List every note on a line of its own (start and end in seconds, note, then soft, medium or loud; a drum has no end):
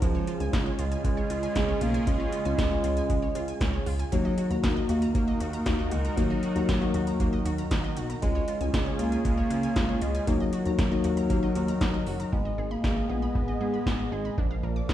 0.02 0.20 C#2 loud
0.02 4.08 C#3 medium
0.02 0.49 F3 loud
0.02 0.09 G#3 loud
0.02 0.23 G#3 medium
0.02 4.08 C#4 medium
0.02 0.23 C#4 medium
0.02 0.23 F4 medium
0.02 4.08 F4 medium
0.02 4.08 G#4 medium
0.02 kick loud
0.02 closed hi-hat medium
0.15 0.22 C#5 medium
0.27 0.35 F4 medium
0.27 closed hi-hat medium
0.40 0.49 C#2 loud
0.40 0.98 G#3 medium
0.40 0.98 C#4 medium
0.40 0.98 F4 medium
0.40 0.48 G#5 medium
0.40 closed hi-hat soft
0.53 0.71 C#2 loud
0.53 0.61 G#3 medium
0.53 kick loud
0.53 snare loud
0.53 closed hi-hat medium
0.66 0.73 C#5 medium
0.79 0.97 C#2 loud
0.79 1.03 G#3 medium
0.79 0.86 F4 medium
0.79 closed hi-hat medium
0.92 0.99 G#5 medium
0.92 closed hi-hat medium
1.04 1.22 C#2 loud
1.04 1.12 G#3 medium
1.04 1.83 G#3 loud
1.04 kick loud
1.04 closed hi-hat medium
1.17 1.25 C#5 medium
1.30 1.48 C#2 medium
1.30 1.37 F4 medium
1.30 closed hi-hat medium
1.43 1.50 G#5 medium
1.43 closed hi-hat medium
1.56 1.74 C#2 loud
1.56 1.63 G#3 medium
1.56 1.84 G#3 medium
1.56 1.84 C#4 medium
1.56 1.84 G#4 medium
1.56 kick loud
1.56 snare loud
1.56 closed hi-hat medium
1.68 1.76 C#5 medium
1.81 1.99 B1 loud
1.81 2.08 A#3 loud
1.81 1.89 F4 medium
1.81 closed hi-hat medium
1.94 2.01 G#5 medium
1.94 closed hi-hat medium
2.07 2.25 C#2 loud
2.07 2.14 G#3 medium
2.07 3.86 G#3 loud
2.07 2.29 G#3 medium
2.07 2.29 C#4 medium
2.07 2.29 F4 medium
2.07 kick loud
2.07 closed hi-hat medium
2.20 2.27 C#5 medium
2.32 2.40 F4 medium
2.32 closed hi-hat medium
2.45 2.54 C#2 medium
2.45 2.60 G#3 medium
2.45 2.60 C#4 medium
2.45 2.60 F4 medium
2.45 2.53 G#5 medium
2.45 closed hi-hat soft
2.58 2.76 C#2 loud
2.58 2.66 G#3 medium
2.58 kick loud
2.58 snare loud
2.58 closed hi-hat medium
2.71 3.29 G#3 medium
2.71 3.28 C#4 medium
2.71 3.29 F4 medium
2.71 2.78 C#5 medium
2.84 3.02 C#2 loud
2.84 2.91 F4 medium
2.84 closed hi-hat medium
2.97 3.04 G#5 medium
2.97 closed hi-hat medium
3.09 3.27 C#2 loud
3.09 3.17 G#3 medium
3.09 kick loud
3.09 closed hi-hat medium
3.22 3.30 C#5 medium
3.35 3.53 C#2 loud
3.35 3.43 F4 medium
3.35 closed hi-hat medium
3.48 3.55 G#5 medium
3.48 closed hi-hat medium
3.61 3.79 C#2 loud
3.61 3.68 G#3 medium
3.61 kick loud
3.61 snare loud
3.61 closed hi-hat medium
3.73 3.81 C#5 medium
3.86 4.04 C#2 medium
3.86 3.94 F4 medium
3.86 open hi-hat medium
3.99 4.07 G#5 medium
3.99 closed hi-hat medium
4.12 4.30 D#2 loud
4.12 8.18 D#3 medium
4.12 4.60 F#3 loud
4.12 4.19 A#3 medium
4.12 4.34 A#3 medium
4.12 8.18 D#4 medium
4.12 4.34 D#4 medium
4.12 8.18 F#4 medium
4.12 4.34 F#4 medium
4.12 8.18 A#4 medium
4.12 kick loud
4.12 closed hi-hat medium
4.25 4.32 D#5 medium
4.38 4.45 F#4 medium
4.38 closed hi-hat medium
4.51 4.60 D#2 loud
4.51 5.08 A#3 medium
4.51 5.08 D#4 medium
4.51 5.08 F#4 medium
4.51 4.58 A#5 medium
4.51 closed hi-hat soft
4.63 4.81 D#2 loud
4.63 4.71 A#3 medium
4.63 kick loud
4.63 snare loud
4.63 closed hi-hat medium
4.76 4.84 D#5 medium
4.89 5.07 D#2 loud
4.89 5.13 A#3 loud
4.89 4.97 F#4 medium
4.89 closed hi-hat medium
5.02 5.09 A#5 medium
5.02 closed hi-hat medium
5.15 5.33 D#2 loud
5.15 5.22 A#3 medium
5.15 5.93 A#3 loud
5.15 kick loud
5.15 closed hi-hat medium
5.28 5.35 D#5 medium
5.40 5.58 D#2 loud
5.40 5.48 F#4 medium
5.40 closed hi-hat medium
5.53 5.61 A#5 medium
5.53 closed hi-hat medium
5.66 5.93 D#2 medium
5.66 5.73 A#3 medium
5.66 5.95 A#3 medium
5.66 5.95 D#4 medium
5.66 5.95 F#4 medium
5.66 kick loud
5.66 snare loud
5.66 closed hi-hat medium
5.79 5.86 D#5 medium
5.91 6.10 C#2 loud
5.91 6.19 G#3 medium
5.91 5.99 F#4 medium
5.91 closed hi-hat medium
6.05 6.12 A#5 medium
6.05 closed hi-hat medium
6.17 6.35 D#2 loud
6.17 7.97 F#3 loud
6.17 6.39 A#3 medium
6.17 6.25 A#3 loud
6.17 6.39 D#4 medium
6.17 6.39 F#4 medium
6.17 kick loud
6.17 closed hi-hat medium
6.30 6.38 D#5 medium
6.43 6.50 F#4 medium
6.43 closed hi-hat medium
6.56 6.65 D#2 loud
6.56 6.70 A#3 medium
6.56 6.70 D#4 medium
6.56 6.70 F#4 medium
6.56 6.63 A#5 medium
6.56 closed hi-hat soft
6.68 6.86 D#2 loud
6.68 6.76 A#3 medium
6.68 kick loud
6.68 snare loud
6.68 closed hi-hat medium
6.81 7.39 A#3 medium
6.81 7.39 D#4 medium
6.81 7.39 F#4 loud
6.81 6.89 D#5 medium
6.94 7.12 D#2 loud
6.94 7.02 F#4 medium
6.94 closed hi-hat medium
7.07 7.14 A#5 medium
7.07 closed hi-hat medium
7.20 7.38 D#2 loud
7.20 7.27 A#3 medium
7.20 kick loud
7.20 closed hi-hat medium
7.33 7.40 D#5 medium
7.45 7.63 D#2 medium
7.45 7.53 F#4 medium
7.45 closed hi-hat medium
7.58 7.66 A#5 medium
7.58 closed hi-hat medium
7.71 7.98 D#2 loud
7.71 7.78 A#3 medium
7.71 kick loud
7.71 snare loud
7.71 closed hi-hat medium
7.84 7.91 D#5 medium
7.97 8.15 B1 medium
7.97 8.04 F#4 medium
7.97 closed hi-hat medium
8.10 8.17 A#5 medium
8.10 closed hi-hat medium
8.22 8.40 C#2 loud
8.22 10.25 C#3 medium
8.22 8.30 G#3 medium
8.22 8.70 G#3 loud
8.22 8.44 G#3 medium
8.22 10.25 C#4 medium
8.22 8.44 C#4 medium
8.22 10.25 F4 medium
8.22 8.44 F4 medium
8.22 10.25 G#4 medium
8.22 kick loud
8.22 closed hi-hat medium
8.35 8.43 C#5 medium
8.48 8.55 F4 medium
8.48 closed hi-hat medium
8.61 8.70 C#2 loud
8.61 9.18 G#3 medium
8.61 9.18 C#4 medium
8.61 9.18 F4 medium
8.61 8.68 G#5 medium
8.61 closed hi-hat soft
8.73 8.91 C#2 loud
8.73 8.81 G#3 medium
8.73 kick loud
8.73 snare loud
8.73 closed hi-hat medium
8.86 8.94 C#5 medium
8.99 9.17 C#2 loud
8.99 9.23 A#3 loud
8.99 9.07 F4 medium
8.99 closed hi-hat medium
9.12 9.19 G#5 medium
9.12 closed hi-hat medium
9.25 9.43 C#2 loud
9.25 9.32 G#3 medium
9.25 10.03 A#3 loud
9.25 kick loud
9.25 closed hi-hat medium
9.38 9.45 C#5 medium
9.50 9.69 C#2 loud
9.50 9.58 F4 medium
9.50 closed hi-hat medium
9.63 9.71 G#5 medium
9.63 closed hi-hat medium
9.76 9.94 C#2 loud
9.76 9.84 G#3 medium
9.76 10.05 G#3 medium
9.76 10.05 C#4 medium
9.76 10.05 F4 medium
9.76 kick loud
9.76 snare loud
9.76 closed hi-hat medium
9.89 9.96 C#5 medium
10.02 10.20 C#2 medium
10.02 10.29 G#3 loud
10.02 10.09 F4 medium
10.02 closed hi-hat medium
10.15 10.22 G#5 medium
10.15 closed hi-hat medium
10.27 10.45 D#2 loud
10.27 12.31 D#3 medium
10.27 12.07 F#3 loud
10.27 10.35 A#3 medium
10.27 10.49 A#3 medium
10.27 12.30 D#4 medium
10.27 10.49 D#4 medium
10.27 12.31 F#4 medium
10.27 10.49 F#4 medium
10.27 12.31 A#4 loud
10.27 kick loud
10.27 closed hi-hat medium
10.40 10.48 D#5 medium
10.53 10.60 F#4 medium
10.53 closed hi-hat medium
10.66 10.75 D#2 loud
10.66 10.80 A#3 medium
10.66 10.80 D#4 medium
10.66 10.80 F#4 medium
10.66 10.73 A#5 medium
10.66 closed hi-hat soft
10.78 10.97 D#2 loud
10.78 10.86 A#3 medium
10.78 kick loud
10.78 snare loud
10.78 closed hi-hat medium
10.92 11.49 A#3 medium
10.92 11.49 D#4 medium
10.92 11.49 F#4 loud
10.92 10.99 D#5 medium
11.04 11.22 D#2 loud
11.04 11.12 F#4 medium
11.04 closed hi-hat medium
11.17 11.25 A#5 medium
11.17 closed hi-hat medium
11.30 11.48 D#2 loud
11.30 11.37 A#3 medium
11.30 kick loud
11.30 closed hi-hat medium
11.43 11.50 D#5 medium
11.55 11.74 D#2 loud
11.55 11.63 F#4 medium
11.55 closed hi-hat medium
11.68 11.76 A#5 medium
11.68 closed hi-hat medium
11.81 11.99 D#2 loud
11.81 11.89 A#3 medium
11.81 kick loud
11.81 snare loud
11.81 closed hi-hat medium
11.94 12.01 D#5 medium
12.07 12.25 F#1 medium
12.07 12.31 F#3 medium
12.07 12.14 F#4 medium
12.07 open hi-hat medium
12.20 12.27 A#5 medium
12.20 closed hi-hat medium
12.32 12.51 G#1 loud
12.32 14.36 G#3 medium
12.32 12.73 G#3 loud
12.32 12.40 B3 medium
12.32 14.36 G#4 medium
12.32 14.36 D#5 medium
12.32 kick loud
12.45 12.53 D#5 medium
12.58 12.76 G#1 medium
12.58 12.66 G#4 medium
12.71 13.11 A#3 loud
12.71 12.78 B5 medium
12.84 13.02 G#1 loud
12.84 12.91 B3 medium
12.84 kick loud
12.84 snare loud
12.97 13.04 D#5 medium
13.09 13.27 A#1 medium
13.09 13.60 B3 loud
13.09 13.17 G#4 medium
13.22 13.30 B5 medium
13.35 13.53 G#1 loud
13.35 13.43 B3 medium
13.35 kick loud
13.48 13.55 D#5 medium
13.61 13.79 G#2 loud
13.61 14.13 B3 loud
13.61 13.68 G#4 medium
13.74 13.81 B5 medium
13.86 14.04 G#1 medium
13.86 13.94 B3 medium
13.86 kick loud
13.86 snare loud
13.99 14.07 D#5 medium
14.12 14.30 G#1 medium
14.12 14.37 G#3 medium
14.12 14.19 G#4 medium
14.25 14.32 B5 medium
14.37 14.56 A#1 loud
14.37 14.94 F3 medium
14.37 14.94 A#3 medium
14.37 14.45 D4 medium
14.37 14.94 A#4 medium
14.37 14.94 D5 medium
14.37 14.94 F5 medium
14.37 kick loud
14.51 14.58 F5 medium
14.63 14.81 A#1 loud
14.63 14.71 A#4 medium
14.76 14.83 D6 medium
14.89 14.94 A#1 loud
14.89 14.94 D4 medium
14.89 kick loud
14.89 snare loud